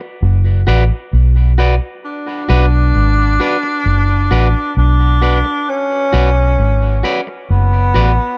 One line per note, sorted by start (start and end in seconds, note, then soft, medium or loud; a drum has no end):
0.01 muted clean electric guitar stroke soft
0.22 0.64 F#1 medium
0.67 0.89 A1 loud
0.67 0.83 F#4 medium
0.67 0.83 B4 medium
0.67 0.84 D5 medium
1.13 1.78 B1 medium
1.58 1.74 F#4 medium
1.58 1.74 B4 medium
1.58 1.75 D5 medium
2.05 4.73 D4 loud
2.49 2.92 B1 medium
2.49 2.65 F#4 medium
2.49 2.65 B4 medium
2.49 2.65 D5 medium
2.95 3.37 G#1 medium
3.40 3.56 F#4 medium
3.40 3.56 B4 medium
3.40 3.56 D5 medium
3.63 muted clean electric guitar stroke soft
3.86 4.28 F#1 medium
4.31 4.53 A1 medium
4.31 4.47 F#4 medium
4.31 4.47 B4 medium
4.31 4.47 D5 medium
4.77 5.42 B1 medium
4.77 5.71 D4 loud
5.22 5.38 F#4 medium
5.22 5.38 B4 medium
5.22 5.38 D5 medium
5.45 muted clean electric guitar stroke medium
5.69 7.24 C#4 loud
6.13 6.55 B1 medium
6.13 6.29 F#4 medium
6.13 6.29 B4 medium
6.13 6.29 D5 medium
6.59 7.01 G#1 medium
7.03 7.19 F#4 medium
7.03 7.20 B4 medium
7.03 7.20 D5 medium
7.27 muted clean electric guitar stroke soft
7.50 7.92 F#1 medium
7.50 8.38 B3 medium
7.94 8.17 A1 medium
7.94 8.10 F#4 medium
7.94 8.11 B4 medium
7.94 8.11 D5 medium